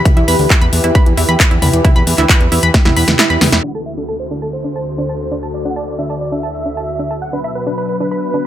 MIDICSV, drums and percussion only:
0, 0, Header, 1, 2, 480
1, 0, Start_track
1, 0, Tempo, 447761
1, 59, Time_signature, 4, 2, 24, 8
1, 9078, End_track
2, 0, Start_track
2, 0, Title_t, "Drums"
2, 58, Note_on_c, 9, 36, 112
2, 60, Note_on_c, 9, 42, 55
2, 60, Note_on_c, 9, 47, 78
2, 165, Note_off_c, 9, 36, 0
2, 167, Note_off_c, 9, 42, 0
2, 167, Note_off_c, 9, 47, 0
2, 180, Note_on_c, 9, 42, 27
2, 287, Note_off_c, 9, 42, 0
2, 300, Note_on_c, 9, 46, 97
2, 407, Note_off_c, 9, 46, 0
2, 420, Note_on_c, 9, 46, 60
2, 527, Note_off_c, 9, 46, 0
2, 538, Note_on_c, 9, 36, 113
2, 539, Note_on_c, 9, 39, 114
2, 539, Note_on_c, 9, 42, 53
2, 645, Note_off_c, 9, 36, 0
2, 647, Note_off_c, 9, 39, 0
2, 647, Note_off_c, 9, 42, 0
2, 659, Note_on_c, 9, 42, 26
2, 767, Note_off_c, 9, 42, 0
2, 779, Note_on_c, 9, 46, 97
2, 886, Note_off_c, 9, 46, 0
2, 900, Note_on_c, 9, 42, 54
2, 1007, Note_off_c, 9, 42, 0
2, 1018, Note_on_c, 9, 36, 114
2, 1020, Note_on_c, 9, 42, 51
2, 1126, Note_off_c, 9, 36, 0
2, 1127, Note_off_c, 9, 42, 0
2, 1140, Note_on_c, 9, 42, 26
2, 1247, Note_off_c, 9, 42, 0
2, 1259, Note_on_c, 9, 46, 101
2, 1366, Note_off_c, 9, 46, 0
2, 1379, Note_on_c, 9, 42, 54
2, 1487, Note_off_c, 9, 42, 0
2, 1498, Note_on_c, 9, 36, 106
2, 1499, Note_on_c, 9, 39, 114
2, 1499, Note_on_c, 9, 42, 54
2, 1606, Note_off_c, 9, 36, 0
2, 1606, Note_off_c, 9, 39, 0
2, 1606, Note_off_c, 9, 42, 0
2, 1620, Note_on_c, 9, 42, 28
2, 1727, Note_off_c, 9, 42, 0
2, 1739, Note_on_c, 9, 46, 100
2, 1739, Note_on_c, 9, 47, 82
2, 1846, Note_off_c, 9, 46, 0
2, 1846, Note_off_c, 9, 47, 0
2, 1859, Note_on_c, 9, 42, 53
2, 1966, Note_off_c, 9, 42, 0
2, 1978, Note_on_c, 9, 36, 117
2, 1980, Note_on_c, 9, 42, 57
2, 1980, Note_on_c, 9, 47, 79
2, 2086, Note_off_c, 9, 36, 0
2, 2087, Note_off_c, 9, 42, 0
2, 2087, Note_off_c, 9, 47, 0
2, 2100, Note_on_c, 9, 42, 28
2, 2207, Note_off_c, 9, 42, 0
2, 2219, Note_on_c, 9, 46, 103
2, 2326, Note_off_c, 9, 46, 0
2, 2339, Note_on_c, 9, 39, 38
2, 2339, Note_on_c, 9, 42, 54
2, 2447, Note_off_c, 9, 39, 0
2, 2447, Note_off_c, 9, 42, 0
2, 2459, Note_on_c, 9, 36, 118
2, 2459, Note_on_c, 9, 39, 124
2, 2459, Note_on_c, 9, 42, 55
2, 2566, Note_off_c, 9, 36, 0
2, 2566, Note_off_c, 9, 39, 0
2, 2566, Note_off_c, 9, 42, 0
2, 2580, Note_on_c, 9, 42, 28
2, 2687, Note_off_c, 9, 42, 0
2, 2700, Note_on_c, 9, 46, 97
2, 2807, Note_off_c, 9, 46, 0
2, 2819, Note_on_c, 9, 42, 57
2, 2926, Note_off_c, 9, 42, 0
2, 2939, Note_on_c, 9, 36, 114
2, 2939, Note_on_c, 9, 38, 58
2, 2939, Note_on_c, 9, 42, 54
2, 3046, Note_off_c, 9, 36, 0
2, 3046, Note_off_c, 9, 38, 0
2, 3046, Note_off_c, 9, 42, 0
2, 3059, Note_on_c, 9, 38, 56
2, 3059, Note_on_c, 9, 42, 27
2, 3059, Note_on_c, 9, 47, 76
2, 3167, Note_off_c, 9, 38, 0
2, 3167, Note_off_c, 9, 42, 0
2, 3167, Note_off_c, 9, 47, 0
2, 3178, Note_on_c, 9, 46, 100
2, 3285, Note_off_c, 9, 46, 0
2, 3299, Note_on_c, 9, 38, 69
2, 3299, Note_on_c, 9, 42, 56
2, 3299, Note_on_c, 9, 47, 60
2, 3406, Note_off_c, 9, 38, 0
2, 3406, Note_off_c, 9, 42, 0
2, 3406, Note_off_c, 9, 47, 0
2, 3419, Note_on_c, 9, 38, 86
2, 3419, Note_on_c, 9, 39, 119
2, 3419, Note_on_c, 9, 42, 53
2, 3526, Note_off_c, 9, 38, 0
2, 3526, Note_off_c, 9, 39, 0
2, 3526, Note_off_c, 9, 42, 0
2, 3539, Note_on_c, 9, 42, 28
2, 3646, Note_off_c, 9, 42, 0
2, 3658, Note_on_c, 9, 38, 99
2, 3658, Note_on_c, 9, 46, 97
2, 3658, Note_on_c, 9, 47, 76
2, 3765, Note_off_c, 9, 38, 0
2, 3765, Note_off_c, 9, 46, 0
2, 3765, Note_off_c, 9, 47, 0
2, 3779, Note_on_c, 9, 38, 92
2, 3779, Note_on_c, 9, 42, 58
2, 3886, Note_off_c, 9, 38, 0
2, 3886, Note_off_c, 9, 42, 0
2, 3898, Note_on_c, 9, 42, 50
2, 4005, Note_off_c, 9, 42, 0
2, 4138, Note_on_c, 9, 42, 94
2, 4245, Note_off_c, 9, 42, 0
2, 4258, Note_on_c, 9, 42, 51
2, 4366, Note_off_c, 9, 42, 0
2, 4379, Note_on_c, 9, 42, 49
2, 4486, Note_off_c, 9, 42, 0
2, 4499, Note_on_c, 9, 42, 25
2, 4607, Note_off_c, 9, 42, 0
2, 4619, Note_on_c, 9, 42, 87
2, 4726, Note_off_c, 9, 42, 0
2, 4740, Note_on_c, 9, 42, 51
2, 4847, Note_off_c, 9, 42, 0
2, 4860, Note_on_c, 9, 42, 50
2, 4967, Note_off_c, 9, 42, 0
2, 5099, Note_on_c, 9, 42, 89
2, 5207, Note_off_c, 9, 42, 0
2, 5219, Note_on_c, 9, 42, 51
2, 5327, Note_off_c, 9, 42, 0
2, 5339, Note_on_c, 9, 42, 49
2, 5447, Note_off_c, 9, 42, 0
2, 5579, Note_on_c, 9, 42, 90
2, 5686, Note_off_c, 9, 42, 0
2, 5699, Note_on_c, 9, 42, 51
2, 5806, Note_off_c, 9, 42, 0
2, 5819, Note_on_c, 9, 42, 49
2, 5926, Note_off_c, 9, 42, 0
2, 5940, Note_on_c, 9, 42, 24
2, 6047, Note_off_c, 9, 42, 0
2, 6059, Note_on_c, 9, 42, 84
2, 6166, Note_off_c, 9, 42, 0
2, 6179, Note_on_c, 9, 42, 50
2, 6286, Note_off_c, 9, 42, 0
2, 6298, Note_on_c, 9, 42, 49
2, 6405, Note_off_c, 9, 42, 0
2, 6418, Note_on_c, 9, 42, 24
2, 6526, Note_off_c, 9, 42, 0
2, 6538, Note_on_c, 9, 42, 85
2, 6645, Note_off_c, 9, 42, 0
2, 6658, Note_on_c, 9, 42, 51
2, 6765, Note_off_c, 9, 42, 0
2, 6777, Note_on_c, 9, 42, 48
2, 6884, Note_off_c, 9, 42, 0
2, 7018, Note_on_c, 9, 42, 86
2, 7125, Note_off_c, 9, 42, 0
2, 7138, Note_on_c, 9, 42, 49
2, 7245, Note_off_c, 9, 42, 0
2, 7257, Note_on_c, 9, 42, 48
2, 7365, Note_off_c, 9, 42, 0
2, 7378, Note_on_c, 9, 42, 26
2, 7485, Note_off_c, 9, 42, 0
2, 7498, Note_on_c, 9, 42, 87
2, 7605, Note_off_c, 9, 42, 0
2, 7617, Note_on_c, 9, 42, 52
2, 7725, Note_off_c, 9, 42, 0
2, 7738, Note_on_c, 9, 42, 47
2, 7845, Note_off_c, 9, 42, 0
2, 7859, Note_on_c, 9, 42, 25
2, 7966, Note_off_c, 9, 42, 0
2, 7978, Note_on_c, 9, 42, 86
2, 8085, Note_off_c, 9, 42, 0
2, 8098, Note_on_c, 9, 42, 50
2, 8205, Note_off_c, 9, 42, 0
2, 8218, Note_on_c, 9, 42, 46
2, 8325, Note_off_c, 9, 42, 0
2, 8338, Note_on_c, 9, 42, 25
2, 8445, Note_off_c, 9, 42, 0
2, 8458, Note_on_c, 9, 42, 81
2, 8565, Note_off_c, 9, 42, 0
2, 8578, Note_on_c, 9, 42, 49
2, 8686, Note_off_c, 9, 42, 0
2, 8698, Note_on_c, 9, 42, 47
2, 8806, Note_off_c, 9, 42, 0
2, 8819, Note_on_c, 9, 42, 24
2, 8926, Note_off_c, 9, 42, 0
2, 8939, Note_on_c, 9, 42, 79
2, 9046, Note_off_c, 9, 42, 0
2, 9078, End_track
0, 0, End_of_file